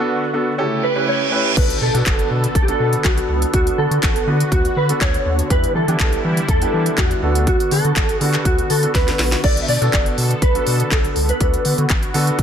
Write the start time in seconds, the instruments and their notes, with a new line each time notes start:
Already playing: supersaw synth D3 B3 F#4, grand piano B3 D4 F#4
0.00 grand piano A4
0.33 grand piano B3 D4 F#4 A4
0.58 supersaw synth C#3 A3 G4, grand piano C#4 E4 G4 A4, reverse cymbal
0.83 clean electric guitar B4
0.96 grand piano C#4 E4 G4 B4
1.08 clean electric guitar C#5
1.32 grand piano C#4 E4 G4 B4
1.56 analog synth bass B1, supersaw synth D3 B3 A4, grand piano B3 D4 F#4 A4, clean electric guitar B4, kick, closed hi-hat, crash, impact
1.70 closed hi-hat
1.81 analog synth bass B2, clean electric guitar A4
1.94 analog synth bass B2, grand piano B3 D4 F#4 A4, closed hi-hat
2.06 analog synth bass F#1, kick, clap, closed hi-hat
2.19 closed hi-hat
2.31 analog synth bass B2
2.44 closed hi-hat
2.55 analog synth bass B1, clean electric guitar A4, kick, closed hi-hat
2.62 clean electric guitar G4
2.68 grand piano B3 D4 F#4 A4, clean electric guitar A4, closed hi-hat
2.80 analog synth bass B2
2.93 closed hi-hat
3.04 analog synth bass B1, clean electric guitar F#4, kick, clap, closed hi-hat
3.18 closed hi-hat
3.29 analog synth bass C#2
3.42 closed hi-hat
3.54 analog synth bass D2, grand piano B3 D4 F#4 A4, clean electric guitar F#4, supersaw synth F#4, kick, closed hi-hat
3.67 closed hi-hat
3.78 analog synth bass D3, clean electric guitar A4
3.91 analog synth bass D3, closed hi-hat
4.03 analog synth bass A1, kick, clap, closed hi-hat
4.16 closed hi-hat
4.27 analog synth bass D3, grand piano B3 D4 F#4 B4
4.40 closed hi-hat
4.52 analog synth bass D2, clean electric guitar F#4, kick, closed hi-hat
4.65 closed hi-hat
4.76 analog synth bass D3, clean electric guitar B4
4.89 grand piano B3 D4 F#4 A4, closed hi-hat
5.01 analog synth bass D2, clean electric guitar C#5, kick, clap, closed hi-hat
5.14 closed hi-hat
5.26 analog synth bass D#2
5.39 closed hi-hat
5.50 analog synth bass E2, supersaw synth G3 E4, grand piano B3 D4 E4 G4, clean electric guitar B4, kick, closed hi-hat
5.64 closed hi-hat
5.75 analog synth bass E3, clean electric guitar A4
5.88 analog synth bass E3, grand piano B3 D4 E4 G4, closed hi-hat
5.99 analog synth bass B1, kick, clap, closed hi-hat
6.13 closed hi-hat
6.25 analog synth bass E3
6.37 closed hi-hat
6.49 analog synth bass E2, clean electric guitar A4, kick, closed hi-hat
6.62 grand piano B3 D4 E4 G4, closed hi-hat
6.74 analog synth bass E3
6.86 closed hi-hat
6.98 analog synth bass E2, clean electric guitar F#4, kick, clap, closed hi-hat
7.11 closed hi-hat
7.22 analog synth bass D2, grand piano B3 D4 F#4 A4, supersaw synth B3 F#4
7.35 closed hi-hat
7.47 clean electric guitar F#4, kick, closed hi-hat
7.60 closed hi-hat
7.71 analog synth bass D3, clean electric guitar A4, open hi-hat
7.85 analog synth bass D3, closed hi-hat
7.96 analog synth bass A1, kick, clap, closed hi-hat
8.09 closed hi-hat
8.21 analog synth bass D3, grand piano B3 D4 F#4 A4, clean electric guitar G4, open hi-hat
8.34 clap, closed hi-hat
8.45 analog synth bass D2, clean electric guitar F#4, kick, closed hi-hat
8.59 closed hi-hat
8.70 analog synth bass D3, clean electric guitar A4, open hi-hat
8.83 grand piano B3 D4 F#4 A4, closed hi-hat
8.95 analog synth bass D2, clean electric guitar B4, kick, snare, closed hi-hat
9.08 snare, closed hi-hat
9.19 analog synth bass A#1, snare, open hi-hat
9.32 snare, closed hi-hat
9.44 analog synth bass B1, grand piano B3 D4 F#4 A4, supersaw synth A4, clean electric guitar D5, kick, crash
9.57 closed hi-hat
9.62 clean electric guitar E5
9.68 analog synth bass B2, clean electric guitar D5, open hi-hat
9.82 analog synth bass B2, grand piano B3 D4 F#4 A4, closed hi-hat
9.93 analog synth bass F#1, kick, clap, closed hi-hat
10.06 closed hi-hat
10.18 analog synth bass B2, open hi-hat
10.31 closed hi-hat
10.42 analog synth bass B1, clean electric guitar B4, kick, closed hi-hat
10.55 grand piano B3 D4 F#4 A4, closed hi-hat
10.67 analog synth bass B2, open hi-hat
10.80 closed hi-hat
10.91 analog synth bass B1, clean electric guitar A4, kick, clap, closed hi-hat
11.05 closed hi-hat
11.16 analog synth bass C#2, open hi-hat
11.29 clean electric guitar B4, closed hi-hat
11.40 analog synth bass D2, grand piano B3 D4 F#4 A4, supersaw synth F#4, kick, closed hi-hat
11.54 closed hi-hat
11.65 analog synth bass D3, open hi-hat
11.78 analog synth bass D3, closed hi-hat
11.90 analog synth bass A1, kick, clap, closed hi-hat
12.03 closed hi-hat
12.14 analog synth bass D3, grand piano B3 D4 F#4 A4, open hi-hat
12.27 closed hi-hat
12.39 analog synth bass D2, kick, closed hi-hat